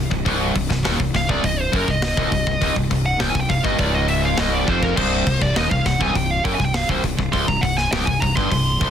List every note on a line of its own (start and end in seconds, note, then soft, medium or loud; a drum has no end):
0.00 0.10 C1 medium
0.00 0.12 C2 medium
0.10 0.25 C1 medium
0.10 0.24 C2 medium
0.10 kick medium
0.25 0.54 C1 loud
0.25 0.54 C2 loud
0.25 kick loud
0.25 open hi-hat medium
0.55 0.69 C1 medium
0.55 0.68 C2 medium
0.55 kick medium
0.55 open hi-hat medium
0.69 0.84 C1 medium
0.69 0.84 C2 medium
0.69 kick medium
0.69 snare soft
0.85 0.99 D#1 loud
0.85 0.99 D#2 loud
0.85 snare loud
0.85 open hi-hat medium
1.00 1.14 C1 medium
1.00 1.13 C2 medium
1.00 kick medium
1.14 1.28 C1 medium
1.14 1.27 C2 medium
1.14 1.30 F5 loud
1.14 kick medium
1.14 snare soft
1.14 open hi-hat medium
1.28 1.43 C1 loud
1.28 1.42 C2 medium
1.28 1.44 D5 medium
1.28 kick medium
1.43 1.71 C1 medium
1.43 1.67 C2 medium
1.43 1.60 D#5 loud
1.43 kick medium
1.43 open hi-hat medium
1.60 1.74 C5 medium
1.72 1.87 F#1 loud
1.72 1.87 F#2 loud
1.72 1.89 A#4 loud
1.72 kick loud
1.72 open hi-hat medium
1.88 2.16 C1 medium
1.88 2.12 C2 medium
1.88 2.74 D#5 medium
1.88 kick medium
2.02 snare loud
2.02 open hi-hat medium
2.17 2.31 C1 medium
2.17 2.31 C2 loud
2.17 kick loud
2.32 2.46 C1 medium
2.32 2.46 C2 medium
2.32 kick medium
2.32 open hi-hat medium
2.47 2.61 C1 medium
2.47 2.61 C2 medium
2.47 kick medium
2.61 2.76 C#1 medium
2.61 2.75 C#2 loud
2.61 kick medium
2.61 open hi-hat medium
2.76 2.90 C1 medium
2.76 2.89 C2 medium
2.76 kick medium
2.90 3.19 C1 medium
2.90 3.14 C2 medium
2.90 kick medium
2.90 open hi-hat medium
3.06 3.20 F#5 medium
3.20 3.34 C1 medium
3.20 3.34 C2 loud
3.20 3.29 G5 loud
3.20 snare loud
3.20 open hi-hat medium
3.30 3.40 G#5 loud
3.35 3.49 C1 medium
3.35 3.48 C2 medium
3.35 kick medium
3.41 3.50 G5 medium
3.49 3.64 C1 medium
3.49 3.63 C2 medium
3.49 3.64 F5 medium
3.49 kick medium
3.49 open hi-hat medium
3.63 3.78 G1 medium
3.63 3.78 G2 medium
3.63 3.79 D#5 medium
3.63 kick medium
3.78 4.34 C#1 medium
3.78 4.37 C#2 loud
3.78 3.94 D5 medium
3.78 kick medium
3.78 open hi-hat medium
3.94 4.09 D#5 medium
4.08 4.24 E5 loud
4.08 open hi-hat medium
4.25 4.39 F5 loud
4.38 4.66 C1 medium
4.38 4.66 C2 loud
4.38 4.54 D#5 medium
4.38 snare loud
4.38 open hi-hat medium
4.54 4.68 D5 medium
4.67 4.95 F1 medium
4.67 4.96 F2 medium
4.67 4.83 C5 medium
4.67 kick medium
4.83 4.97 A#4 medium
4.83 kick medium
4.96 5.25 C1 medium
4.96 5.26 C2 loud
4.96 5.38 C5 medium
4.96 kick loud
4.96 crash loud
5.27 5.41 C1 medium
5.27 5.40 C2 medium
5.27 kick medium
5.27 open hi-hat medium
5.41 5.55 C1 medium
5.41 5.56 C2 medium
5.41 5.57 D5 medium
5.41 kick medium
5.56 5.71 D#1 medium
5.56 5.70 D#2 loud
5.56 5.70 D#5 medium
5.56 snare loud
5.56 open hi-hat medium
5.70 5.85 C1 medium
5.70 5.85 C2 medium
5.70 5.85 F5 loud
5.70 kick medium
5.86 6.00 C1 medium
5.86 5.99 C2 medium
5.86 6.00 F#5 loud
5.86 kick medium
5.86 snare soft
5.86 open hi-hat medium
6.00 6.15 C1 loud
6.00 6.15 C2 medium
6.00 6.16 G#5 medium
6.00 kick medium
6.15 6.43 C1 medium
6.15 6.39 C2 medium
6.15 6.31 G5 medium
6.15 kick medium
6.15 open hi-hat medium
6.31 6.44 F5 medium
6.45 6.59 F#1 medium
6.45 6.59 F#2 medium
6.45 6.54 G5 loud
6.45 kick loud
6.45 open hi-hat medium
6.55 6.65 G#5 loud
6.60 6.87 C1 medium
6.60 6.84 C2 medium
6.60 kick medium
6.65 6.76 G5 medium
6.74 6.90 F5 medium
6.74 snare loud
6.74 open hi-hat medium
6.89 7.03 C1 medium
6.89 7.04 C2 loud
6.89 6.98 C5 medium
6.89 kick loud
7.04 7.18 C1 medium
7.04 7.18 C2 medium
7.04 kick medium
7.04 open hi-hat medium
7.19 7.33 C1 medium
7.19 7.34 C2 medium
7.19 kick medium
7.32 7.47 C#1 medium
7.32 7.48 C#2 loud
7.32 7.48 C6 loud
7.32 kick medium
7.32 open hi-hat medium
7.48 7.62 C1 medium
7.48 7.63 C2 medium
7.48 7.63 A#5 medium
7.48 kick medium
7.61 7.91 C1 medium
7.61 7.87 C2 medium
7.61 7.77 F#5 loud
7.61 kick medium
7.61 open hi-hat medium
7.77 7.91 G#5 loud
7.77 snare soft
7.92 8.06 C1 loud
7.92 8.07 C2 loud
7.92 8.06 G5 loud
7.92 snare loud
7.92 open hi-hat medium
8.06 8.21 C1 medium
8.06 8.22 C2 medium
8.06 8.21 G#5 loud
8.06 kick medium
8.20 8.36 C1 medium
8.20 8.38 C2 medium
8.20 8.36 A#5 loud
8.20 kick medium
8.20 open hi-hat medium
8.36 8.51 G1 medium
8.36 8.52 G2 loud
8.36 8.49 C6 loud
8.36 kick medium
8.51 8.79 C1 medium
8.51 8.76 C2 medium
8.51 8.90 C6 loud
8.51 kick medium
8.51 open hi-hat medium
8.81 8.90 C1 medium
8.81 8.90 C2 loud
8.81 kick loud
8.81 open hi-hat medium